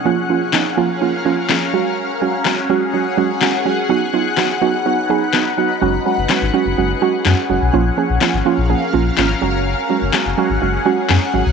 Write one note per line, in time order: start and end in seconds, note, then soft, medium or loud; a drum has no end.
0.00 3.86 C#4 medium
0.05 0.17 F3 loud
0.05 0.17 A#3 loud
0.05 0.18 C#4 loud
0.05 0.18 F4 loud
0.05 1.72 A#4 medium
0.05 1.72 F5 medium
0.29 0.41 F3 medium
0.29 0.41 A#3 medium
0.29 0.42 C#4 medium
0.29 0.42 F4 medium
0.53 0.65 F3 medium
0.53 0.66 A#3 medium
0.53 0.66 C#4 medium
0.53 0.66 D#4 medium
0.53 snare medium
0.53 clap loud
0.77 0.89 F3 loud
0.77 0.89 A#3 loud
0.77 0.90 C#4 loud
0.77 0.90 F4 loud
1.01 1.13 F3 medium
1.01 1.13 A#3 medium
1.01 1.13 C#4 medium
1.01 1.14 F4 loud
1.25 1.37 F3 loud
1.25 1.37 A#3 loud
1.25 1.38 C#4 loud
1.25 1.38 F4 loud
1.49 1.61 F3 medium
1.49 1.61 A#3 medium
1.49 1.62 C#4 medium
1.49 1.62 G#4 medium
1.49 snare medium
1.49 clap loud
1.73 2.12 F#3 medium
1.73 2.12 G#3 medium
1.73 2.12 C#4 medium
1.73 2.12 F#4 loud
1.73 3.88 G#4 medium
1.73 7.70 F#5 medium
2.21 2.33 F#3 medium
2.21 2.33 G#3 medium
2.21 2.34 C#4 medium
2.21 2.34 F#4 loud
2.45 2.57 F#3 medium
2.45 2.57 G#3 medium
2.45 2.57 C#4 medium
2.45 2.58 F#4 loud
2.45 snare medium
2.45 clap loud
2.69 2.81 F#3 loud
2.69 2.82 G#3 loud
2.69 2.82 C#4 loud
2.69 2.82 F#4 loud
2.94 3.06 F#3 medium
2.94 3.06 G#3 medium
2.94 3.06 C#4 medium
2.94 3.06 F#4 medium
3.17 3.29 F#3 loud
3.17 3.30 G#3 loud
3.17 3.30 C#4 loud
3.17 3.30 F#4 loud
3.41 3.54 F#3 medium
3.41 3.54 G#3 medium
3.41 3.54 C#4 medium
3.41 3.54 F#4 loud
3.41 snare medium
3.41 clap loud
3.65 3.77 F#3 medium
3.65 3.78 G#3 medium
3.65 3.78 C#4 medium
3.65 3.78 F#4 medium
3.89 4.01 F#3 loud
3.89 4.01 B3 loud
3.89 4.02 D#4 loud
3.89 5.80 D#4 medium
3.89 4.02 F#4 loud
3.89 5.80 B4 medium
4.13 4.25 F#3 medium
4.13 4.26 B3 medium
4.13 4.26 D#4 medium
4.13 4.26 F4 loud
4.37 4.49 F#3 medium
4.37 4.50 B3 medium
4.37 4.50 D#4 medium
4.37 4.50 F#4 medium
4.37 snare medium
4.37 clap loud
4.61 4.73 F#3 loud
4.61 4.74 B3 loud
4.61 4.74 D#4 loud
4.61 4.74 F#4 loud
4.85 4.97 F#3 medium
4.85 4.98 B3 medium
4.85 4.98 D#4 medium
4.85 4.98 F#4 loud
5.09 5.21 F#3 loud
5.09 5.22 B3 loud
5.09 5.22 D#4 loud
5.09 5.22 G#4 loud
5.33 5.45 F#3 medium
5.33 5.46 B3 medium
5.33 5.46 D#4 medium
5.33 5.46 F#4 medium
5.33 snare medium
5.33 clap loud
5.58 5.70 F#3 medium
5.58 5.70 B3 medium
5.58 5.70 D#4 medium
5.58 5.70 F#4 medium
5.82 5.98 F#1 loud
5.82 5.94 F#3 loud
5.82 5.94 G#3 loud
5.82 11.52 C#4 medium
5.82 5.94 C#4 loud
5.82 5.94 F#4 loud
5.82 7.72 G#4 medium
6.05 6.18 F#3 medium
6.05 6.18 G#3 medium
6.05 6.18 C#4 medium
6.05 6.18 F#4 loud
6.18 6.26 F#1 loud
6.29 6.42 F#3 medium
6.29 6.42 G#3 medium
6.29 6.42 C#4 medium
6.29 6.42 F#4 medium
6.29 snare medium
6.29 clap loud
6.42 6.50 G#1 medium
6.54 6.66 F#3 loud
6.54 6.66 G#3 loud
6.54 6.66 C#4 loud
6.54 6.66 F#4 loud
6.66 6.74 F#1 medium
6.78 6.94 F#1 medium
6.78 6.90 F#3 medium
6.78 6.90 G#3 medium
6.78 6.90 C#4 medium
6.78 6.90 F#4 medium
7.02 7.14 F#3 loud
7.02 7.14 G#3 loud
7.02 7.14 C#4 loud
7.02 7.14 F#4 loud
7.25 7.34 F#2 loud
7.25 7.38 F#3 medium
7.25 7.38 G#3 medium
7.25 7.38 C#4 medium
7.25 7.38 F#4 medium
7.25 snare medium
7.25 clap loud
7.49 7.58 F#1 loud
7.49 7.61 F#3 medium
7.49 7.62 G#3 medium
7.49 7.62 C#4 medium
7.49 7.62 F#4 medium
7.62 7.70 B1 medium
7.73 7.90 A#1 loud
7.73 7.85 F3 loud
7.73 7.85 A#3 loud
7.73 7.86 C#4 loud
7.73 7.86 F4 loud
7.73 9.40 A#4 medium
7.73 9.40 F5 medium
7.97 8.09 F3 medium
7.97 8.09 A#3 medium
7.97 8.10 C#4 medium
7.97 8.10 G#4 loud
8.10 8.18 A#1 medium
8.21 8.33 F3 medium
8.21 8.34 A#3 medium
8.21 8.34 C#4 medium
8.21 8.34 F4 medium
8.21 snare medium
8.21 clap loud
8.34 8.42 G#1 medium
8.45 8.57 F3 loud
8.45 8.58 A#3 loud
8.45 8.58 C#4 loud
8.45 8.58 F4 loud
8.58 8.74 A#1 medium
8.69 8.81 F3 medium
8.69 8.82 A#3 medium
8.69 8.82 C#4 medium
8.69 8.82 G#4 medium
8.93 9.10 A#1 medium
8.93 9.05 F3 loud
8.93 9.06 A#3 loud
8.93 9.06 C#4 loud
8.93 9.06 F4 loud
9.17 9.34 G#1 medium
9.17 9.29 F3 medium
9.17 9.30 A#3 medium
9.17 9.30 C#4 medium
9.17 9.30 F4 medium
9.17 snare medium
9.17 clap loud
9.41 9.75 F#1 medium
9.41 9.80 F#3 medium
9.41 9.80 G#3 medium
9.41 9.80 C#4 medium
9.41 9.80 F#4 loud
9.41 11.52 G#4 medium
9.41 11.52 F#5 medium
9.90 10.02 F#3 medium
9.90 10.02 G#3 medium
9.90 10.02 C#4 medium
9.90 10.02 F#4 medium
10.02 10.10 F#1 loud
10.13 10.25 F#3 medium
10.13 10.26 G#3 medium
10.13 10.26 C#4 medium
10.13 10.26 F#4 medium
10.13 snare medium
10.13 clap loud
10.26 10.34 F#1 loud
10.38 10.50 F#3 loud
10.38 10.50 G#3 loud
10.38 10.50 C#4 loud
10.38 10.50 F#4 loud
10.50 10.58 G#1 medium
10.62 10.78 F#1 loud
10.62 10.73 F#3 medium
10.62 10.74 G#3 medium
10.62 10.74 C#4 medium
10.62 10.74 F#4 loud
10.86 10.97 F#3 loud
10.86 10.98 G#3 loud
10.86 10.98 C#4 loud
10.86 10.98 F#4 loud
11.09 11.18 F#2 medium
11.09 11.22 F#3 medium
11.09 11.22 G#3 medium
11.09 11.22 C#4 medium
11.09 11.22 G#4 medium
11.09 snare medium
11.09 clap loud
11.34 11.42 G#1 medium
11.34 11.46 F#3 medium
11.34 11.46 G#3 medium
11.34 11.46 C#4 medium
11.34 11.46 F#4 loud
11.46 11.52 C2 medium